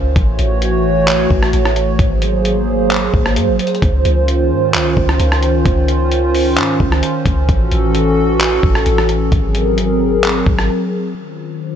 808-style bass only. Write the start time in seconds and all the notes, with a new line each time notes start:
Already playing: C#2
0.16 A1
0.39 A1
1.30 A1
1.53 A1
1.99 G#1
3.14 G#1
3.36 G#2
3.48 G#1
3.82 C#2
4.05 C#2
4.51 G#2
4.74 C#2
4.97 C#2
5.20 C#2
5.66 C#2
6.57 G#2
6.80 C#2
7.26 C#2
7.49 A1
7.72 A1
8.63 A1
8.86 A1
9.32 G#1
10.46 G#1